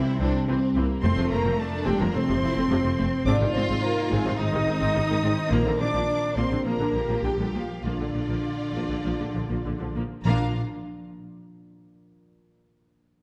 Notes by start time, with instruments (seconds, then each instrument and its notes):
Already playing: cello section C3, harp C3 G3 C4 E4 G4, french horn section C4, violin section E4 C5
0.20 double bass section C2, viola section E3 C4, harp C4, violin section D4
0.47 double bass section C2, viola section E3 C4, violin section C4, harp G4
0.75 double bass section C2, viola section E3 C4, harp E4
0.79 violin section A#3
1.02 double bass section F1, harp F2, timpani F2, viola section A3 C4, cello section C4, french horn section C5, violin section C6
1.07 violin section A3
1.16 double bass section F1, viola section C3 F3
1.30 double bass section F1, viola section F3 A3, harp A3, cello section A#3, french horn section A#4, violin section A#5
1.45 double bass section F1, viola section A3 C4
1.58 cello section A3, violin section D4 A5, harp F4, french horn section A4
1.85 double bass section F1, cello section G3, viola section A3 C4, harp C4, french horn section G4, violin section G5
1.99 double bass section F1, viola section C3 F3, cello section A#3, french horn section A#4, violin section A#5
2.14 double bass section F1, harp C3, viola section A3 C4, cello section C4, violin section C4 C6, french horn section C5
2.28 double bass section F1, viola section C3 F3
2.41 double bass section F1, viola section F3 A3, harp A3, violin section E4
2.56 double bass section F1, viola section A3 C4
2.70 double bass section F1, viola section C3 F3, violin section D4, harp F4
2.84 double bass section F1, viola section F3 A3
2.98 double bass section F1, viola section A3 C4, harp C4, violin section C4
3.26 double bass section G#1, harp G#2, viola section G#3 C4, cello section D4, violin section F4 D6, french horn section D5
3.40 double bass section G#1, viola section C3 D#3
3.54 double bass section G#1, viola section D#3 G#3, harp G#3, cello section C4, french horn section C5, violin section C6
3.69 double bass section G#1, viola section G#3 C4
3.83 cello section A#3, harp D#4, french horn section A#4, violin section A#5
4.11 double bass section G#1, cello section G#3, viola section G#3 C4, harp C4, french horn section G#4, violin section G#5
4.24 double bass section G#1, viola section C3 D#3, cello section C4, french horn section C5, violin section C6
4.37 double bass section G#1, harp D#3, viola section G#3 C4, violin section D#4, cello section D#4, french horn section D#5
4.42 violin section D#6
4.52 double bass section G#1, viola section C3 D#3
4.66 double bass section G#1, viola section D#3 G#3, harp G#3, violin section C4
4.80 double bass section G#1, viola section G#3 C4
4.94 double bass section G#1, viola section C3 D#3, harp D#4, violin section D#4
5.09 double bass section G#1, viola section D#3 G#3
5.22 double bass section G#1, viola section G#3 C4, violin section C4
5.51 double bass section A#1, harp A#2, viola section F3 A#3, cello section A#3, french horn section A#4, violin section A#5
5.65 double bass section A#1, viola section D3
5.78 double bass section A#1, viola section D3 F3, harp A#3, cello section D4, french horn section D5, violin section D6
5.93 double bass section A#1, viola section F3 A#3
6.08 violin section A#3, harp F4
6.35 double bass section A#1, viola section F3 A#3, cello section C4, harp A#4, french horn section C5, violin section C6
6.51 double bass section A#1, viola section D3
6.64 double bass section A#1, viola section F3 A#3, harp F3, cello section A#3, violin section D4 A#5, french horn section A#4
6.78 double bass section A#1, viola section D3
6.93 double bass section A#1, viola section D3 F3, harp A#3, violin section G4
7.07 double bass section A#1, viola section F3 A#3
7.23 double bass section A#1, viola section D3, cello section G3, harp F4, french horn section G4, violin section G5
7.37 double bass section A#1, viola section D3 F3
7.53 double bass section A#1, cello section F3, viola section F3 A#3, french horn section F4, harp A#4, violin section F5
7.82 double bass section A#1, harp A#2, cello section D3, viola section F3 A#3, french horn section D4, violin section F4 D5
7.98 double bass section A#1, viola section D3
8.13 double bass section A#1, viola section D3 F3, harp A#3
8.28 double bass section A#1, viola section F3 A#3
8.43 harp F4
8.73 double bass section A#1, viola section F3 A#3, harp A#4
8.88 double bass section A#1, viola section D3
9.04 double bass section A#1, viola section F3 A#3, harp F3
9.19 double bass section A#1, viola section D3
9.35 double bass section A#1, viola section D3 F3, harp A#3
9.49 double bass section A#1, viola section F3 A#3
9.65 double bass section A#1, viola section D3, harp F4
9.79 double bass section A#1, viola section D3 F3
9.95 double bass section A#1, viola section F3 A#3, harp A#4
10.24 double bass section A#1, timpani A#2, harp A#2 F3 A#3 D4 A#4, cello section A#3, french horn section A#3, viola section D4, violin section F4 F5 A#5
10.28 harp D5